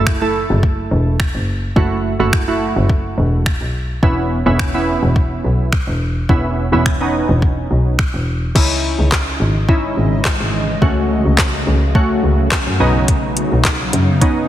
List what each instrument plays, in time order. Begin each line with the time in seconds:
Already playing: double bass F#1, synth keys A3 E4 A4
0.07 finger snap, kick
0.21 synth keys A3 E4 A4
0.50 double bass F#1
0.63 kick
0.91 double bass E1
1.20 finger snap, kick
1.35 double bass F#1
1.76 double bass F#1, synth keys A3 E4 F#4, kick
2.19 double bass F#1, synth keys A3 E4 F#4
2.33 finger snap, kick
2.48 synth keys A3 E4 F#4
2.76 double bass F#1
2.90 kick
3.18 double bass E1
3.46 finger snap, kick
3.61 double bass B1
4.03 double bass E1, synth keys B3 C#4 E4, kick
4.46 double bass E1, synth keys B3 C#4 E4
4.59 finger snap, kick
4.74 synth keys B3 C#4 E4
5.03 double bass E1
5.16 kick
5.44 double bass B1
5.73 finger snap, kick
5.88 double bass E1
6.29 double bass E1, synth keys B3 C#4 E4, kick
6.72 double bass E1, synth keys B3 C#4 E4
6.86 finger snap, kick
7.01 synth keys B3 C#4 D#4
7.29 double bass E1
7.42 kick
7.71 double bass B1
7.99 finger snap, kick
8.14 double bass E1
8.55 double bass C#2, ambient pad C#3 E3 G#3 D#5, synth keys C#4 D#4 E4, kick, crash
8.99 double bass C#2
9.12 kick, snare, clap
9.40 double bass G#1
9.69 synth keys C#4 D#4 E4, kick
9.97 double bass G#1
10.25 kick, snare, clap
10.40 double bass G#1
10.82 double bass C#2, ambient pad F#3 A3 F#4, synth keys A3 C#4 F#4, kick
11.25 double bass C#2
11.38 kick, snare, clap
11.67 double bass C#2
11.95 synth keys A3 C#4 F#4, kick
12.23 double bass C#2
12.52 kick, snare, clap
12.67 double bass F#2
12.80 double bass B1, ambient pad C#3 F#3 B3 D#4, synth keys B3 C#4 D#4
13.08 kick, closed hi-hat
13.37 closed hi-hat
13.52 double bass B1
13.65 kick, snare, clap, closed hi-hat
13.93 double bass F#2, closed hi-hat
14.21 synth keys B3 C#4 D#4, kick, closed hi-hat